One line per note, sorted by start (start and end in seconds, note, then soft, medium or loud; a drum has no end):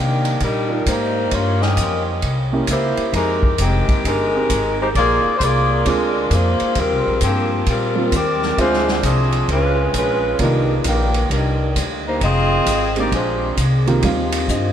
0.00 0.39 C3 medium
0.00 0.43 D#3 medium
0.00 0.43 A#3 medium
0.00 0.43 D4 medium
0.00 0.43 G4 medium
0.25 ride soft
0.40 0.85 A#2 medium
0.40 kick soft
0.40 ride medium
0.44 0.85 G3 medium
0.44 0.85 D4 medium
0.44 0.85 D#4 medium
0.44 0.85 A#4 medium
0.69 0.84 D4 medium
0.69 0.84 D#4 medium
0.69 0.84 F4 soft
0.69 0.85 A#4 medium
0.86 1.30 G#2 medium
0.86 1.32 A#3 medium
0.86 1.33 D#4 medium
0.86 1.33 G4 medium
0.86 1.33 C5 medium
0.86 kick soft
0.86 hi-hat pedal soft
0.86 ride medium
1.31 1.76 G2 medium
1.31 1.62 A#3 medium
1.31 1.62 F4 medium
1.31 1.61 G4 medium
1.31 1.62 C#5 loud
1.31 kick soft
1.31 ride medium
1.62 2.07 C#4 medium
1.62 2.07 G4 medium
1.62 2.07 A#4 medium
1.62 2.07 D#5 medium
1.62 snare soft
1.77 2.21 F2 medium
1.77 kick soft
1.77 hi-hat pedal medium
1.77 ride medium
2.22 2.66 C2 medium
2.22 kick soft
2.22 ride medium
2.53 2.67 A#3 medium
2.53 2.67 C#4 medium
2.53 2.67 E4 medium
2.53 2.67 G4 medium
2.67 2.95 C#2 medium
2.67 3.11 E4 medium
2.67 3.12 C5 medium
2.67 kick soft
2.67 hi-hat pedal medium
2.67 ride medium
2.71 3.12 A#3 medium
2.71 3.12 G4 medium
2.97 muted upright bass stroke soft
2.97 ride soft
3.13 3.57 F2 medium
3.13 3.57 G#3 medium
3.13 3.57 D#4 medium
3.13 3.57 G4 medium
3.13 3.57 A#4 loud
3.13 kick soft
3.13 ride medium
3.43 kick soft
3.58 3.86 F1 medium
3.58 4.06 D#3 medium
3.58 4.06 G#3 medium
3.58 4.06 G4 medium
3.58 kick soft
3.58 hi-hat pedal medium
3.58 ride medium
3.62 4.06 C4 medium
3.89 kick soft
3.89 ride soft
4.04 4.48 G1 medium
4.04 4.76 G#3 medium
4.04 4.76 D#4 medium
4.04 4.76 G4 medium
4.04 4.76 A#4 loud
4.04 kick soft
4.04 ride medium
4.33 4.48 G#3 medium
4.33 4.48 C4 soft
4.33 4.49 D#4 soft
4.33 4.49 G4 medium
4.50 4.94 G#1 medium
4.50 kick soft
4.50 hi-hat pedal medium
4.50 ride medium
4.82 4.89 G#3 medium
4.82 4.88 D#4 medium
4.82 4.89 G4 medium
4.82 4.88 C5 medium
4.95 5.22 A#1 medium
4.95 5.34 A#3 medium
4.95 5.34 F4 medium
4.95 5.34 G#4 loud
4.95 5.34 D5 loud
4.95 kick soft
4.95 ride medium
5.24 muted upright bass stroke soft
5.38 5.84 C2 medium
5.38 5.41 C5 medium
5.38 kick soft
5.38 hi-hat pedal soft
5.38 ride medium
5.43 5.87 A#3 medium
5.43 5.87 F4 medium
5.43 5.87 G#4 medium
5.43 5.87 D5 loud
5.85 6.30 D2 medium
5.85 6.12 G#3 medium
5.85 6.32 G#3 medium
5.85 6.12 C4 soft
5.85 6.13 D4 soft
5.85 6.13 F4 medium
5.85 6.32 A#4 medium
5.85 kick soft
5.85 ride medium
5.89 6.33 D4 medium
5.89 6.32 F4 medium
6.30 6.58 F2 medium
6.30 6.78 A#3 medium
6.30 6.78 F4 medium
6.30 6.78 G#4 medium
6.30 6.78 C5 medium
6.30 kick soft
6.30 hi-hat pedal soft
6.30 ride medium
6.60 muted upright bass stroke soft
6.60 ride soft
6.75 6.92 D#2 medium
6.75 7.23 G3 medium
6.75 7.23 C4 medium
6.75 7.23 F4 medium
6.75 kick soft
6.75 ride medium
6.79 7.23 A#4 loud
6.92 7.06 C2 medium
7.07 7.21 A#1 medium
7.21 7.65 G2 medium
7.21 7.65 F3 medium
7.21 7.65 A#3 medium
7.21 7.65 C4 medium
7.21 7.65 G4 medium
7.21 kick soft
7.21 hi-hat pedal medium
7.21 ride medium
7.66 8.11 A#2 medium
7.66 8.14 G3 medium
7.66 8.14 C4 medium
7.66 8.14 F4 medium
7.66 8.14 A#4 medium
7.66 kick soft
7.66 ride medium
7.95 8.10 G3 medium
7.95 8.11 A#3 soft
7.95 8.11 C4 soft
7.95 8.11 F4 medium
8.12 8.56 D#2 medium
8.12 8.59 C4 medium
8.12 8.59 G4 medium
8.12 8.60 A#4 medium
8.12 8.59 D5 medium
8.12 kick soft
8.12 hi-hat pedal medium
8.12 ride medium
8.42 snare soft
8.57 9.02 D2 medium
8.57 9.48 G#3 medium
8.57 9.02 G#3 medium
8.57 9.49 C4 soft
8.57 9.02 D4 medium
8.57 9.49 F4 medium
8.57 9.02 F4 medium
8.57 9.02 C5 loud
8.57 9.49 E5 medium
8.57 kick soft
8.57 ride medium
8.73 snare soft
8.88 snare soft
9.03 9.47 C2 medium
9.03 9.50 F3 medium
9.03 9.50 C4 medium
9.03 9.50 D4 medium
9.03 9.50 G#4 medium
9.03 kick soft
9.03 hi-hat pedal medium
9.03 ride medium
9.32 ride soft
9.48 9.93 C#2 medium
9.48 9.93 C#4 medium
9.48 9.93 F4 medium
9.48 9.93 B4 medium
9.48 kick soft
9.48 ride medium
9.52 9.93 G#3 medium
9.93 10.38 A#1 medium
9.93 10.38 G#3 medium
9.93 10.38 F4 medium
9.93 kick soft
9.93 hi-hat pedal medium
9.93 ride medium
9.98 10.38 C#4 medium
9.98 10.38 B4 medium
10.39 10.83 C2 medium
10.39 11.67 D#3 medium
10.39 10.74 G3 medium
10.39 11.66 A#3 medium
10.39 10.74 D4 medium
10.39 10.74 D#4 medium
10.39 11.67 F4 medium
10.39 10.74 A#4 medium
10.39 11.66 D5 medium
10.39 kick soft
10.39 ride medium
10.84 11.29 A#1 medium
10.84 11.29 D#3 medium
10.84 11.29 A#3 medium
10.84 11.29 D4 medium
10.84 11.29 G4 medium
10.84 kick soft
10.84 hi-hat pedal medium
10.84 ride medium
11.14 ride soft
11.30 11.74 C2 medium
11.30 11.73 G3 medium
11.30 11.73 D4 medium
11.30 11.73 D#4 medium
11.30 11.74 A#4 medium
11.30 kick soft
11.30 ride medium
11.76 12.20 D2 medium
11.76 kick soft
11.76 hi-hat pedal medium
11.76 ride medium
12.07 12.21 A#3 medium
12.07 12.21 D#4 medium
12.07 12.21 G4 medium
12.07 12.21 C5 medium
12.21 12.65 F1 medium
12.21 12.93 C4 medium
12.21 12.93 F4 loud
12.21 12.93 G#4 medium
12.21 12.93 D#5 loud
12.21 kick soft
12.21 ride medium
12.66 13.10 G#1 medium
12.66 kick soft
12.66 hi-hat pedal medium
12.66 ride medium
12.96 13.10 G#3 medium
12.96 13.13 A#3 medium
12.96 13.11 C4 medium
12.96 13.11 D4 soft
12.96 13.11 G4 medium
12.96 13.13 G4 medium
12.96 13.13 D5 medium
12.96 ride soft
13.00 13.13 D#4 medium
13.11 13.56 A#1 medium
13.11 13.56 G#3 medium
13.11 13.56 D4 medium
13.11 13.56 F4 medium
13.11 13.56 C5 medium
13.11 kick soft
13.11 ride medium
13.57 14.01 C2 medium
13.57 kick soft
13.57 hi-hat pedal medium
13.57 ride medium
13.86 14.01 D#3 medium
13.86 14.02 A#3 medium
13.86 14.01 C4 medium
13.86 14.02 F4 medium
13.86 14.02 G4 medium
13.86 ride soft
14.03 14.47 D#2 medium
14.03 14.73 D#3 medium
14.03 14.73 G3 medium
14.03 14.73 C4 soft
14.03 14.73 C4 medium
14.03 14.73 F4 medium
14.03 14.46 F5 medium
14.03 kick soft
14.03 ride medium
14.32 ride medium
14.48 14.73 G2 medium
14.48 14.73 D#5 medium
14.48 kick soft
14.48 hi-hat pedal medium